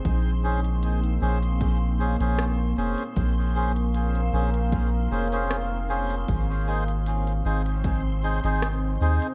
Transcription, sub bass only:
X:1
M:4/4
L:1/16
Q:"Swing 16ths" 1/4=77
K:Bbm
V:1 name="Sub bass" clef=bass
B,,,6 B,,,4- B,,, B,,,3 F,,, z | B,,,6 B,,,4 F,,,6 | A,,,6 A,,,4- A,,, A,,,3 E,, z |]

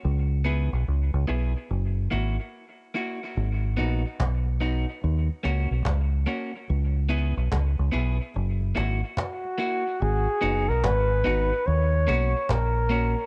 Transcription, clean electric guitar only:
X:1
M:4/4
L:1/16
Q:"Swing 16ths" 1/4=72
K:G#m
V:1 name="Clean electric guitar"
z2 [B,EG] z3 [B,EG] z3 [A,EF] z3 [A,EF] z | z2 [B,DF] z3 [B,DF] z3 [A,CF] z3 [A,CF] z | z2 [B,EG] z3 [B,EG] z3 [A,EF] z3 [A,EF] z | z2 [B,DF] z3 [B,DF] z3 [A,CF] z3 [A,CF] z |]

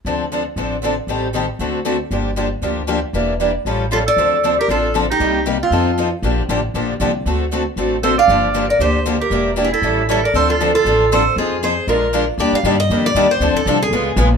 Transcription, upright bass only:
X:1
M:4/4
L:1/8
Q:"Swing" 1/4=234
K:Dm
V:1 name="Upright bass" clef=bass
D,,4 A,,,4 | A,,,4 D,,4 | G,,,4 D,,4 | E,,,4 A,,,4 |
D,,4 A,,,4 | C,,4 F,,4 | B,,,2 A,,,2 B,,,2 C,,2 | D,,4 A,,,4 |
G,,,4 D,,4 | E,,,4 A,,,4 | D,,4 A,,,4 | F,,4 B,,,4 |
_E,, z G,,2 F,,2 E,,2 | D,, z C,,2 ^C,,2 B,,,2 |]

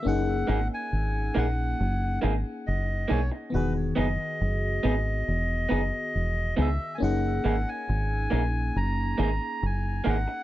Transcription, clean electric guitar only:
X:1
M:4/4
L:1/8
Q:1/4=69
K:F#mix
V:1 name="Clean electric guitar"
z [A,DG] z [A,DG] z [A,DG] z [A,DG] | z [B,DG] z [B,DG] z [B,DG] z [B,DG] | z [A,DG] z [A,DG] z [A,DG] z [A,DG] |]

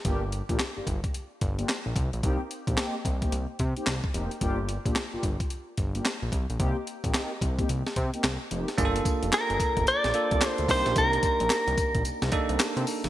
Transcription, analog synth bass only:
X:1
M:4/4
L:1/16
Q:"Swing 16ths" 1/4=110
K:Cdor
V:1 name="Analog synth bass" clef=bass
G,,,3 B,,, z G,,, G,,, z3 G,,,2 z B,,, C,, B,,, | C,, z2 B,,, z2 C,,2 C,, z C, z C,, z F,,, z | G,,,3 B,,, z G,,, G,,, z3 G,,,2 z B,,, C,, B,,, | C,, z2 B,,, z2 C,,2 C,, z C, z C,, z F,,, z |
G,,,2 z F,,, z G,,, z G,,, B,,, B,,, z C,, z D,, C,, B,,, | C,,2 z B,,, z C,, z B,,, C,, C,, z C,, z C, z F,,, |]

